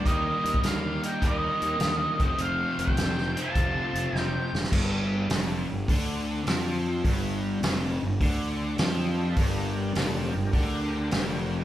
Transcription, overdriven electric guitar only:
X:1
M:4/4
L:1/8
Q:"Swing" 1/4=103
K:Gm
V:1 name="Overdriven electric guitar" clef=bass
[E,G,B,E]4 [E,G,B,E]3 [F,,C,F,A,C]- | [F,,C,F,A,C]3 [F,,C,F,A,C]4 z | G,,2 F,, G,, D,2 F,2 | G,,2 F,, G,, D,2 F,2 |
G,,2 F,, G,, D,2 F,,2 |]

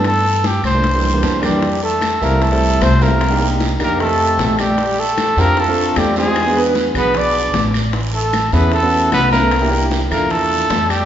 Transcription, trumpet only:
X:1
M:4/4
L:1/8
Q:1/4=152
K:C
V:1 name="Trumpet"
A2 G c4 G- | [K:F] G A2 B A2 c B- | B2 z B A3 G- | G A2 B A2 G _A- |
_A2 z =B d3 z | z A2 =B A2 B _B- | B2 z B A3 G |]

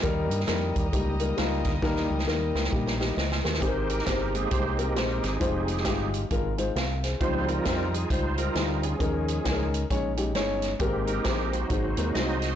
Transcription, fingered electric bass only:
X:1
M:4/4
L:1/8
Q:"Swing" 1/4=134
K:Ebmix
V:1 name="Fingered electric bass" clef=bass
E,, G,, F,, E,, D,,2 D,, =D,, | E,, D,, E,, D,, B,,,2 D,, E,, | A,,,2 G,,,2 C,,2 B,,, A,,, | F,,,2 G,,,2 A,,,2 C,,2 |
D,,2 F,,2 D,,2 =D,,2 | E,,2 D,,2 B,,,2 G,,,2 | A,,,2 B,,,2 A,,, E,, C,,2 |]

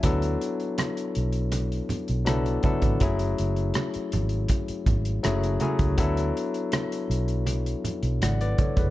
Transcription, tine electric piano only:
X:1
M:4/4
L:1/16
Q:1/4=81
K:Dlyd
V:1 name="Tine electric piano"
[F,B,DEA]6 z6 [F,B,DEA]2 [F,B,DEA]2 | [F,A,CEG]6 z6 [F,A,CEG]2 [F,A,CEG]2 | [F,B,DEA]6 z6 [df] [Bd] [Ac] [GB] |]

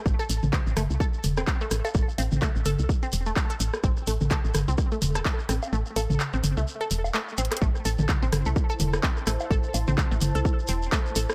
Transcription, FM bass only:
X:1
M:4/4
L:1/16
Q:"Swing 16ths" 1/4=127
K:Am
V:1 name="FM bass" clef=bass
A,,, z A,,, A,,, z A,,, G,,, C,, z2 E,,,2 z2 A,,, z | A,,, z A,,, A,,, z A,,, G,,, C,, z2 E,,,2 z2 A,,, z | A,,, z A,,, A,,, z A,,, G,,, C,, z2 E,,,2 z2 A,,, z | A,,, z A,,, A,,, z A,,, G,,, C,, z2 E,,,2 z2 A,,, z |
A,,, z A,,, A,,, z A,,, G,,, C,, z2 E,,,2 z2 A,,, z | A,,, z A,,, A,,, z A,,, G,,, C,, z2 E,,,2 z2 A,,, z |]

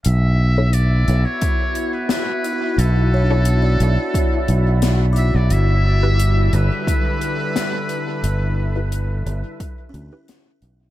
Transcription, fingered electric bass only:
X:1
M:4/4
L:1/16
Q:1/4=88
K:Bm
V:1 name="Fingered electric bass" clef=bass
B,,,6 B,,, z8 z | B,,,6 B,,, z3 B,,,4- B,,, B,,, | G,,,6 G,,, z8 z | G,,,6 G,,, z3 D,, z3 B,,,2 |]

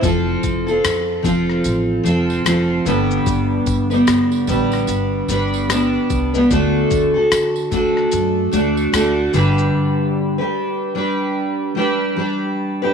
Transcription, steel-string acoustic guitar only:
X:1
M:4/4
L:1/16
Q:"Swing 16ths" 1/4=74
K:Gmix
V:1 name="Steel-string acoustic guitar"
[F,CFA]3 [CFA]3 [F,CFA]4 [F,CFA]2 [F,CFA]2 [G,,D,G,B,DB]2- | [G,,D,G,B,DB]3 [G,B,DB]3 [G,B,DB]4 [G,B,DB]2 [G,B,DB]3 [G,B,DB] | [D,A,D^FA]3 [DFA]3 [A,DFA]4 [A,DFA]2 [A,DFA]2 [G,,D,G,DGB]2- | [G,,D,G,DGB]3 [G,DGB]3 [G,DGB]4 [G,DGB]2 [G,DGB]3 [G,DGB] |]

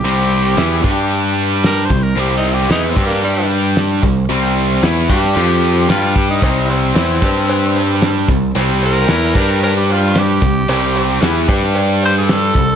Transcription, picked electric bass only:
X:1
M:4/4
L:1/8
Q:1/4=113
K:C
V:1 name="Picked electric bass" clef=bass
C,,2 E,, G,,4 C,, | C,,2 E,, G,,4 C,, | C,,2 E,, G,, F,,2 G,,2 | C,,2 E,, G,,4 C,, |
C,,2 E,, G,,4 C,, | C,,2 E,, G,,4 C,, |]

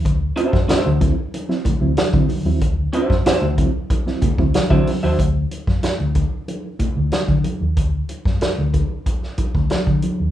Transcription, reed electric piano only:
X:1
M:4/4
L:1/16
Q:1/4=93
K:Dmix
V:1 name="Reed electric piano"
D, z [CE] z [CE] D, [F,CE] z2 [F,CE] D, [F,CE] z [F,CE] D, [F,CE] | D, z [CE] z [CE] D, [F,CE] z2 [F,CE] D, [F,CE] D, [F,CE] [CE] z | z16 | z16 |]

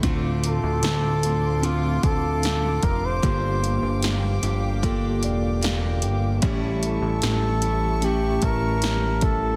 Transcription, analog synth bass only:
X:1
M:4/4
L:1/16
Q:1/4=75
K:Dm
V:1 name="Analog synth bass" clef=bass
D,,3 D,, D,,6 D,,4 F,,,2 | G,,,3 G,,,3 G,,,4 E,,,4 G,,,2 | A,,,3 A,,, A,,,6 A,,,6 |]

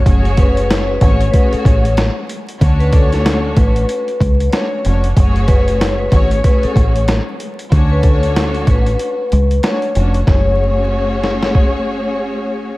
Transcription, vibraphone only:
X:1
M:4/4
L:1/16
Q:"Swing 16ths" 1/4=94
K:F#m
V:1 name="Vibraphone"
z2 B2 c B c2 B A c2 z4 | z B A4 B6 c2 z2 | z2 B2 c B c2 B A c2 z4 | z B A4 B6 c2 z2 |
c12 z4 |]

